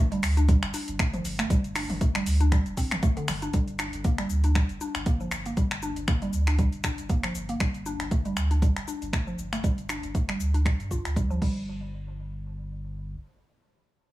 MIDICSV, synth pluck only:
0, 0, Header, 1, 2, 480
1, 0, Start_track
1, 0, Key_signature, -2, "minor"
1, 0, Tempo, 508475
1, 1418, Time_signature, 4, 2, 24, 8
1, 13329, End_track
2, 0, Start_track
2, 0, Title_t, "Synth pluck"
2, 0, Program_c, 0, 84
2, 0, Note_on_c, 0, 57, 84
2, 97, Note_off_c, 0, 57, 0
2, 110, Note_on_c, 0, 55, 75
2, 212, Note_off_c, 0, 55, 0
2, 350, Note_on_c, 0, 62, 77
2, 447, Note_off_c, 0, 62, 0
2, 459, Note_on_c, 0, 55, 85
2, 530, Note_off_c, 0, 55, 0
2, 698, Note_on_c, 0, 62, 76
2, 824, Note_off_c, 0, 62, 0
2, 938, Note_on_c, 0, 57, 81
2, 1057, Note_off_c, 0, 57, 0
2, 1070, Note_on_c, 0, 53, 76
2, 1172, Note_off_c, 0, 53, 0
2, 1310, Note_on_c, 0, 57, 78
2, 1407, Note_off_c, 0, 57, 0
2, 1416, Note_on_c, 0, 55, 83
2, 1489, Note_off_c, 0, 55, 0
2, 1656, Note_on_c, 0, 62, 95
2, 1783, Note_off_c, 0, 62, 0
2, 1897, Note_on_c, 0, 57, 83
2, 2017, Note_off_c, 0, 57, 0
2, 2029, Note_on_c, 0, 55, 75
2, 2132, Note_off_c, 0, 55, 0
2, 2270, Note_on_c, 0, 62, 77
2, 2367, Note_off_c, 0, 62, 0
2, 2377, Note_on_c, 0, 55, 85
2, 2449, Note_off_c, 0, 55, 0
2, 2617, Note_on_c, 0, 60, 81
2, 2744, Note_off_c, 0, 60, 0
2, 2857, Note_on_c, 0, 57, 101
2, 2983, Note_off_c, 0, 57, 0
2, 2990, Note_on_c, 0, 50, 99
2, 3087, Note_off_c, 0, 50, 0
2, 3231, Note_on_c, 0, 62, 78
2, 3333, Note_off_c, 0, 62, 0
2, 3339, Note_on_c, 0, 55, 85
2, 3410, Note_off_c, 0, 55, 0
2, 3579, Note_on_c, 0, 62, 97
2, 3704, Note_off_c, 0, 62, 0
2, 3820, Note_on_c, 0, 58, 78
2, 3938, Note_off_c, 0, 58, 0
2, 3952, Note_on_c, 0, 55, 75
2, 4053, Note_off_c, 0, 55, 0
2, 4192, Note_on_c, 0, 62, 76
2, 4288, Note_off_c, 0, 62, 0
2, 4299, Note_on_c, 0, 55, 77
2, 4370, Note_off_c, 0, 55, 0
2, 4540, Note_on_c, 0, 62, 79
2, 4665, Note_off_c, 0, 62, 0
2, 4779, Note_on_c, 0, 58, 80
2, 4898, Note_off_c, 0, 58, 0
2, 4913, Note_on_c, 0, 53, 74
2, 5014, Note_off_c, 0, 53, 0
2, 5154, Note_on_c, 0, 58, 73
2, 5249, Note_off_c, 0, 58, 0
2, 5260, Note_on_c, 0, 55, 84
2, 5330, Note_off_c, 0, 55, 0
2, 5499, Note_on_c, 0, 62, 97
2, 5624, Note_off_c, 0, 62, 0
2, 5738, Note_on_c, 0, 58, 77
2, 5857, Note_off_c, 0, 58, 0
2, 5872, Note_on_c, 0, 55, 71
2, 5973, Note_off_c, 0, 55, 0
2, 6113, Note_on_c, 0, 62, 75
2, 6208, Note_off_c, 0, 62, 0
2, 6219, Note_on_c, 0, 55, 80
2, 6290, Note_off_c, 0, 55, 0
2, 6460, Note_on_c, 0, 62, 75
2, 6585, Note_off_c, 0, 62, 0
2, 6700, Note_on_c, 0, 58, 78
2, 6818, Note_off_c, 0, 58, 0
2, 6832, Note_on_c, 0, 53, 75
2, 6933, Note_off_c, 0, 53, 0
2, 7071, Note_on_c, 0, 58, 75
2, 7168, Note_off_c, 0, 58, 0
2, 7179, Note_on_c, 0, 55, 82
2, 7250, Note_off_c, 0, 55, 0
2, 7420, Note_on_c, 0, 62, 93
2, 7545, Note_off_c, 0, 62, 0
2, 7661, Note_on_c, 0, 57, 76
2, 7779, Note_off_c, 0, 57, 0
2, 7792, Note_on_c, 0, 55, 73
2, 7893, Note_off_c, 0, 55, 0
2, 8031, Note_on_c, 0, 62, 73
2, 8128, Note_off_c, 0, 62, 0
2, 8140, Note_on_c, 0, 55, 81
2, 8210, Note_off_c, 0, 55, 0
2, 8379, Note_on_c, 0, 62, 76
2, 8504, Note_off_c, 0, 62, 0
2, 8619, Note_on_c, 0, 57, 80
2, 8738, Note_off_c, 0, 57, 0
2, 8751, Note_on_c, 0, 53, 75
2, 8853, Note_off_c, 0, 53, 0
2, 8991, Note_on_c, 0, 57, 73
2, 9087, Note_off_c, 0, 57, 0
2, 9099, Note_on_c, 0, 55, 79
2, 9170, Note_off_c, 0, 55, 0
2, 9340, Note_on_c, 0, 62, 90
2, 9465, Note_off_c, 0, 62, 0
2, 9579, Note_on_c, 0, 57, 74
2, 9698, Note_off_c, 0, 57, 0
2, 9712, Note_on_c, 0, 55, 67
2, 9813, Note_off_c, 0, 55, 0
2, 9952, Note_on_c, 0, 62, 71
2, 10048, Note_off_c, 0, 62, 0
2, 10059, Note_on_c, 0, 55, 76
2, 10130, Note_off_c, 0, 55, 0
2, 10300, Note_on_c, 0, 65, 73
2, 10425, Note_off_c, 0, 65, 0
2, 10538, Note_on_c, 0, 55, 76
2, 10657, Note_off_c, 0, 55, 0
2, 10670, Note_on_c, 0, 53, 93
2, 10767, Note_off_c, 0, 53, 0
2, 10779, Note_on_c, 0, 55, 89
2, 11225, Note_off_c, 0, 55, 0
2, 13329, End_track
0, 0, End_of_file